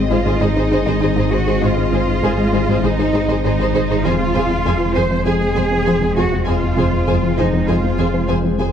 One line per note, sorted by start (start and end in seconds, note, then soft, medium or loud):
0.00 4.06 G#1 medium
0.00 4.05 D#3 medium
0.00 3.88 G#3 medium
0.00 4.04 G#3 medium
0.00 3.88 C4 medium
0.00 4.04 G#4 medium
0.00 4.04 C5 medium
0.00 4.01 D#5 medium
0.11 0.17 G#1 soft
0.11 0.20 G#3 medium
0.11 0.20 D#4 medium
0.11 0.41 F4 medium
0.11 0.18 G#4 medium
0.11 0.17 C5 soft
0.26 0.32 G#1 medium
0.26 0.35 G#2 medium
0.26 0.35 G#3 medium
0.26 0.32 G#4 medium
0.26 0.32 C5 medium
0.41 0.47 G#1 soft
0.41 0.50 G#3 medium
0.41 1.32 D#4 medium
0.41 0.51 D#4 medium
0.41 0.48 G#4 medium
0.41 0.47 C5 soft
0.56 0.63 G#1 soft
0.56 0.66 G#2 medium
0.56 0.66 C4 medium
0.56 0.63 G#4 soft
0.56 0.63 C5 medium
0.71 0.78 G#1 medium
0.71 0.81 G#2 medium
0.71 0.81 G#3 medium
0.71 0.78 G#4 medium
0.71 0.78 C5 medium
0.86 0.93 G#1 soft
0.86 0.95 G#3 medium
0.86 0.96 D#4 medium
0.86 0.93 G#4 medium
0.86 0.93 C5 medium
1.01 1.08 G#1 medium
1.01 1.10 G#3 medium
1.01 1.11 D#4 medium
1.01 1.08 G#4 soft
1.01 1.08 C5 soft
1.16 1.24 G#1 medium
1.16 1.25 G#2 medium
1.16 1.26 G#3 medium
1.16 1.23 G#4 medium
1.16 1.23 C5 medium
1.30 1.38 G#1 soft
1.30 1.40 G#2 medium
1.30 1.63 F#4 medium
1.30 1.38 G#4 medium
1.30 1.41 G#4 medium
1.30 1.38 C5 medium
1.47 1.54 G#1 soft
1.47 1.56 G#2 medium
1.47 1.56 G#4 medium
1.47 1.53 G#4 medium
1.47 1.53 C5 soft
1.62 1.69 G#1 medium
1.62 1.71 G#2 medium
1.62 1.71 G#3 medium
1.62 2.84 F4 medium
1.62 1.68 G#4 medium
1.62 1.69 C5 medium
1.77 1.86 G#2 medium
1.92 2.00 G#1 soft
1.92 2.02 G#2 medium
1.92 2.02 C4 medium
1.92 1.99 G#4 soft
1.92 1.99 C5 soft
2.08 2.17 G#2 medium
2.22 2.30 G#1 medium
2.22 2.32 G#2 medium
2.22 2.32 G#3 medium
2.22 2.29 G#4 medium
2.22 2.30 C5 medium
2.38 2.47 G#3 medium
2.53 2.60 G#1 soft
2.53 2.62 G#3 medium
2.53 2.62 D#4 medium
2.53 2.60 G#4 medium
2.53 2.60 C5 soft
2.68 2.75 G#1 medium
2.68 2.78 G#2 medium
2.68 2.78 G#3 medium
2.68 2.75 G#4 medium
2.68 2.76 C5 medium
2.84 2.90 G#1 soft
2.84 2.93 G#3 medium
2.84 3.43 D#4 medium
2.84 2.93 D#4 medium
2.84 2.91 G#4 soft
2.84 2.90 C5 medium
2.98 3.05 G#1 soft
2.98 3.08 G#2 medium
2.98 3.08 C4 medium
2.98 3.06 G#4 soft
2.98 3.05 C5 medium
3.13 3.20 G#1 medium
3.13 3.23 G#2 medium
3.13 3.23 G#3 medium
3.13 3.21 G#4 medium
3.13 3.20 C5 medium
3.28 3.35 G#1 soft
3.28 3.38 G#3 medium
3.28 3.39 D#4 medium
3.28 3.36 G#4 medium
3.28 3.35 C5 medium
3.44 3.50 G#1 medium
3.44 3.53 G#3 medium
3.44 3.54 D#4 medium
3.44 4.04 D#4 medium
3.44 3.51 G#4 soft
3.44 3.50 C5 medium
3.59 3.66 G#1 medium
3.59 3.68 G#2 medium
3.59 3.69 G#3 medium
3.59 3.66 G#4 medium
3.59 3.66 C5 medium
3.74 3.81 G#1 soft
3.74 3.83 G#2 medium
3.74 3.84 G#4 medium
3.74 3.81 G#4 medium
3.74 3.80 C5 medium
3.90 3.96 G#1 soft
3.90 3.99 G#2 medium
3.90 4.00 G#4 medium
3.90 3.97 G#4 medium
3.90 3.96 C5 medium
4.05 8.72 F1 medium
4.05 4.14 F2 medium
4.05 4.13 F2 medium
4.05 8.72 C3 medium
4.05 4.15 F3 medium
4.05 8.72 G#3 medium
4.05 8.72 C4 medium
4.05 4.96 F4 medium
4.05 8.72 G#4 medium
4.05 4.14 G#4 medium
4.05 4.13 C5 medium
4.05 8.72 C5 medium
4.05 4.13 G#5 medium
4.20 4.29 F2 medium
4.35 4.44 F2 medium
4.35 4.43 F2 medium
4.35 4.45 G#3 medium
4.35 4.44 G#4 soft
4.35 4.43 C5 medium
4.35 4.43 G#5 medium
4.50 4.59 F2 medium
4.65 4.73 F2 medium
4.65 4.75 F2 medium
4.65 4.75 F3 medium
4.65 4.75 G#4 medium
4.65 4.73 C5 medium
4.65 4.74 G#5 medium
4.80 4.89 F3 medium
4.95 5.03 F2 medium
4.95 5.05 F3 medium
4.95 5.05 C4 soft
4.95 5.04 G#4 medium
4.95 5.26 C5 medium
4.95 5.03 C5 soft
4.95 5.03 G#5 medium
5.11 5.20 F2 medium
5.11 5.20 F3 medium
5.26 5.34 F2 medium
5.26 5.35 F3 medium
5.26 5.35 C4 medium
5.26 6.15 G#4 medium
5.26 5.35 G#4 medium
5.26 5.34 C5 medium
5.26 5.35 G#5 medium
5.41 5.50 F2 medium
5.41 5.50 G#3 medium
5.56 5.64 F2 medium
5.56 5.66 F2 medium
5.56 5.66 F3 medium
5.56 5.64 G#4 soft
5.56 5.64 C5 soft
5.56 5.64 G#5 medium
5.71 5.81 F3 medium
5.71 5.80 C4 medium
5.86 5.94 F2 medium
5.86 5.96 F3 medium
5.86 5.96 C4 medium
5.86 5.94 G#4 soft
5.86 5.95 C5 medium
5.86 5.95 G#5 medium
6.01 6.11 F2 medium
6.01 6.10 F3 medium
6.16 6.25 F2 medium
6.16 6.27 F2 medium
6.16 6.26 F4 medium
6.16 6.47 F#4 medium
6.16 6.24 G#4 soft
6.16 6.26 C5 soft
6.16 6.24 G#5 soft
6.32 6.42 F2 medium
6.32 6.41 F4 medium
6.46 6.55 F2 medium
6.46 6.57 F2 medium
6.46 6.56 F3 medium
6.46 7.36 F4 medium
6.46 6.54 G#4 medium
6.46 6.56 C5 medium
6.46 6.54 G#5 medium
6.64 6.73 F2 medium
6.77 6.86 F2 medium
6.77 6.88 F2 medium
6.77 6.86 G#3 medium
6.77 6.85 G#4 soft
6.77 6.87 C5 soft
6.77 6.86 G#5 soft
6.93 7.02 F2 soft
7.07 7.17 F2 medium
7.07 7.16 F2 medium
7.07 7.17 F3 medium
7.07 7.16 G#4 soft
7.07 7.16 C5 soft
7.07 7.16 G#5 medium
7.23 7.32 F3 medium
7.37 7.46 F2 medium
7.37 7.47 F3 medium
7.37 7.47 C4 medium
7.37 7.69 D#4 medium
7.37 7.46 G#4 soft
7.37 7.45 C5 soft
7.37 7.46 G#5 soft
7.53 7.63 F2 medium
7.53 7.62 F3 medium
7.67 7.76 F2 medium
7.67 7.78 F3 medium
7.67 7.78 C4 medium
7.67 8.29 F4 medium
7.67 7.75 G#4 soft
7.67 7.76 C5 soft
7.67 7.76 G#5 soft
7.83 7.93 F2 medium
7.83 7.93 G#3 medium
7.98 8.06 F2 soft
7.98 8.08 F2 medium
7.98 8.08 F3 medium
7.98 8.07 G#4 soft
7.98 8.07 C5 soft
7.98 8.06 G#5 soft
8.14 8.23 F3 medium
8.14 8.23 C4 medium
8.29 8.37 F2 medium
8.29 8.38 F3 medium
8.29 8.38 C4 medium
8.29 8.37 G#4 soft
8.29 8.37 C5 soft
8.29 8.37 G#5 soft
8.44 8.53 F2 medium
8.44 8.53 F3 medium
8.58 8.68 F2 medium
8.58 8.67 F2 medium
8.58 8.69 F4 medium
8.58 8.67 G#4 soft
8.58 8.69 C5 soft
8.58 8.68 G#5 soft